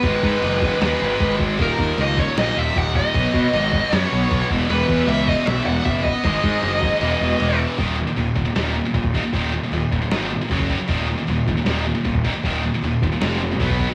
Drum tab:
CC |x---x---x---x---|x---x---x---x---|x---x---x---x---|x---x---x---x---|
SD |--------o-------|--------o-------|--------o-------|--------o-------|
BD |o-o---o-----o-o-|o-o---o-----o-o-|o-o---o-----o-o-|--o---o-----o-o-|

CC |x---x---x---x---|x---x---x---x---|x---x---x---x---|x---x---x---x---|
SD |----------------|--------o-------|--------o-------|--------o-------|
BD |o-o---o---------|o-----o-----ooo-|o-----o-----ooo-|o-----o-----ooo-|

CC |x---x---x---x---|
SD |--------o-------|
BD |o-----o-----ooo-|